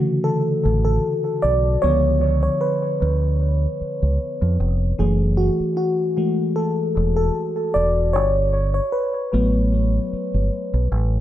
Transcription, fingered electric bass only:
0.65 A1
1.44 B1
1.84 C#2
3.02 D2
3.81 muted fingered electric bass stroke
4.02 C#2
4.42 F2
4.60 F1
5.00 F#1
5.60 muted fingered electric bass stroke
6.97 E1
7.76 E1
8.15 G1
9.34 A1
10.13 muted fingered electric bass stroke
10.34 G1
10.74 B1
10.92 A1

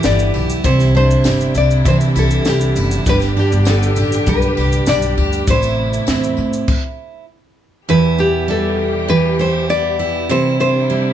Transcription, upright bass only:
0.04 G1
0.34 B1
0.65 C2
1.25 G1
1.55 C2
1.85 C3
2.15 C2
2.46 C2
2.76 F#1
3.06 G1
3.52 G1
3.97 A1
4.27 B1
4.57 C2
4.87 B1
5.17 D2
5.48 A1
6.08 E2
6.38 A2

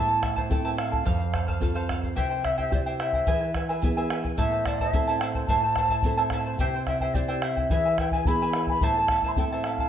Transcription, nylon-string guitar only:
Already playing: A2
0.50 C4 E4 A4
1.05 F2
1.60 C4 F4 A4
2.16 C3
2.71 C4 E4 G4
3.27 E3
3.82 B3 E4 G#4
4.38 A2
4.93 C4 E4 A4
5.49 A2
6.04 C4 E4 A4
6.60 C3
7.15 C4 E4 G4
7.70 E3
8.26 B3 E4 G#4
8.82 A2
9.36 C4 E4 A4

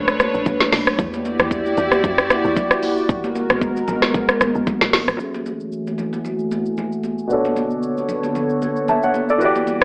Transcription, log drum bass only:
Already playing: C#2
0.34 A1
0.46 B1
0.72 B1
0.99 E2
1.40 E2
1.78 E2
2.04 F#2
2.45 E2
3.09 G#1
3.50 G#1
3.88 G#1
4.14 A1
4.41 G#1
4.55 A1
4.81 A1
4.93 G#1
5.08 G#1

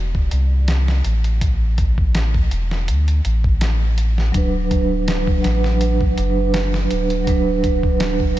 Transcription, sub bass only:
Already playing: E1
0.32 C2
1.05 A1
2.52 E1
2.89 D2
3.25 A1
4.35 D1
5.45 A1
6.18 F#1
6.91 D1

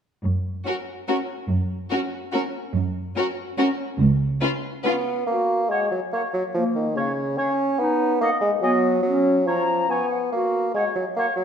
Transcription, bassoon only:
4.84 B3
5.27 A#3
5.70 G#3
5.91 F#3
6.13 A#3
6.34 F#3
6.54 F3
6.75 D#3
6.95 C#3
7.37 C#4
7.79 B3
8.21 A#3
8.41 G#3
8.62 F#3
9.02 F#3
9.47 F3
9.89 B3
10.32 A#3
10.74 G#3
10.95 F#3
11.16 A#3
11.36 F#3

